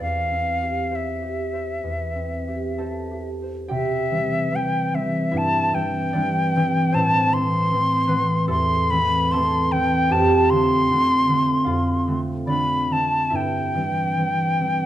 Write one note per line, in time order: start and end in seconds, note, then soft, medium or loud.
0.00 1.82 E2 soft
0.00 0.61 G4 soft
0.00 0.97 F5 medium
0.32 2.14 C4 soft
0.62 1.21 G4 soft
0.91 1.52 C5 soft
0.95 3.29 E5 medium
1.22 2.47 G4 soft
1.53 2.78 C5 soft
1.84 3.74 E2 soft
2.15 4.11 C4 soft
2.48 3.10 G4 soft
2.78 3.73 A4 medium
2.78 3.41 C5 soft
2.78 4.27 A5 medium
3.11 3.68 G4 soft
3.42 6.91 C5 soft
3.68 6.97 C3 medium
3.68 6.96 G4 medium
3.68 4.57 E5 medium
3.68 6.96 G5 medium
4.11 4.51 E3 soft
4.11 4.50 G3 soft
4.11 4.51 C4 soft
4.52 4.93 E3 soft
4.52 4.93 G3 soft
4.52 4.93 C4 soft
4.52 4.96 G5 medium
4.94 5.72 E3 soft
4.94 5.72 G3 soft
4.94 5.72 C4 soft
4.94 5.39 E5 medium
5.31 6.96 G2 medium
5.31 9.21 E4 medium
5.31 9.22 E5 medium
5.37 5.76 A5 medium
5.72 6.13 E3 soft
5.72 6.15 G3 soft
5.72 6.14 C4 medium
5.72 6.96 G5 medium
6.13 6.55 E3 soft
6.13 6.55 G3 soft
6.13 6.56 C4 soft
6.13 6.97 D4 medium
6.13 7.48 D5 medium
6.56 6.98 E3 soft
6.56 6.98 G3 soft
6.56 6.93 C4 medium
6.92 10.14 A2 medium
6.92 7.33 C4 medium
6.92 10.82 C5 loud
6.92 7.35 A5 medium
7.31 7.70 E3 soft
7.31 7.72 A3 soft
7.31 8.49 C6 medium
7.36 7.71 C4 medium
7.72 8.07 E3 soft
7.72 8.08 A3 soft
7.72 8.09 C4 soft
8.07 8.89 E3 medium
8.07 8.47 A3 soft
8.07 10.13 B3 medium
8.07 8.90 C4 medium
8.07 8.76 B4 medium
8.48 10.14 E2 medium
8.48 8.89 A3 medium
8.48 9.32 A4 loud
8.48 8.92 C6 medium
8.90 9.33 E3 medium
8.90 9.33 A3 medium
8.90 9.33 C4 medium
8.90 9.33 B5 medium
9.31 9.72 E3 medium
9.31 9.73 A3 medium
9.31 9.73 C4 medium
9.31 13.23 A4 medium
9.31 13.22 A5 loud
9.31 9.73 C6 medium
9.72 10.15 E3 medium
9.72 10.50 A3 medium
9.72 10.51 C4 medium
9.72 10.13 G5 medium
10.10 11.65 F2 medium
10.10 14.01 G4 medium
10.10 12.81 G5 loud
10.10 10.52 A5 medium
10.50 10.89 D3 soft
10.50 10.90 A3 soft
10.50 10.90 C4 medium
10.50 12.20 C6 medium
10.90 11.27 D3 soft
10.90 11.28 A3 soft
10.90 11.28 C4 medium
11.28 12.06 D3 soft
11.28 12.06 A3 soft
11.28 12.07 C4 soft
11.64 13.35 F2 medium
11.64 13.35 F4 medium
11.64 13.34 F5 medium
12.07 12.47 D3 soft
12.07 12.47 A3 medium
12.07 12.48 C4 medium
12.47 12.89 D3 soft
12.47 12.89 A3 soft
12.47 12.90 C4 soft
12.47 13.35 D4 medium
12.47 13.35 D5 medium
12.47 12.94 B5 medium
12.90 13.35 D3 soft
12.90 13.36 A3 soft
12.90 13.74 C4 soft
12.90 13.37 A5 medium
13.30 14.86 G2 medium
13.30 14.86 E4 medium
13.30 14.86 E5 medium
13.36 14.86 G5 medium
13.74 14.16 E3 soft
13.74 14.16 G3 soft
13.74 14.17 C4 soft
14.17 14.60 E3 soft
14.17 14.60 G3 soft
14.17 14.60 C4 soft
14.61 14.86 E3 soft
14.61 14.86 G3 soft
14.61 14.86 C4 soft